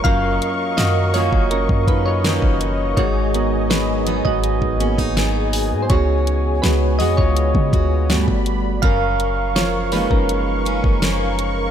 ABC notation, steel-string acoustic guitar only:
X:1
M:4/4
L:1/16
Q:1/4=82
K:G#dor
V:1 name="Steel-string acoustic guitar"
[F,,C]4 D,2 [D,A,C]4 C2 [D,A,C]4 | [G,,D]4 F,2 [F,B,D]4 C D [F,B,D]4 | [C,F]4 G,2 [G,B,F]4 F2 =G,,4 | [F,,C]4 E,2 [E,A,C]4 C2 [E,A,C]4 |]